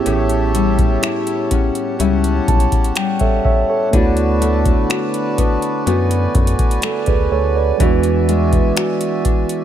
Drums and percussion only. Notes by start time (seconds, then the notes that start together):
0.06 closed hi-hat
0.29 closed hi-hat
0.55 closed hi-hat
0.78 kick, closed hi-hat
1.03 finger snap, closed hi-hat
1.27 closed hi-hat
1.51 kick, closed hi-hat
1.75 closed hi-hat
2.00 closed hi-hat
2.24 closed hi-hat
2.48 kick, closed hi-hat
2.60 closed hi-hat
2.72 kick, closed hi-hat
2.84 closed hi-hat
2.96 finger snap, closed hi-hat
3.19 kick, closed hi-hat
3.45 kick
3.93 kick, closed hi-hat
4.17 closed hi-hat
4.42 closed hi-hat
4.65 kick, closed hi-hat
4.90 finger snap, closed hi-hat
5.14 closed hi-hat
5.38 kick, closed hi-hat
5.62 closed hi-hat
5.87 closed hi-hat
6.11 closed hi-hat
6.35 kick, closed hi-hat
6.47 closed hi-hat
6.59 kick, closed hi-hat
6.71 closed hi-hat
6.82 finger snap, closed hi-hat
7.06 kick, closed hi-hat
7.80 kick, closed hi-hat
8.03 closed hi-hat
8.29 closed hi-hat
8.52 kick, closed hi-hat
8.77 finger snap, closed hi-hat
9.01 closed hi-hat
9.25 kick, closed hi-hat
9.49 closed hi-hat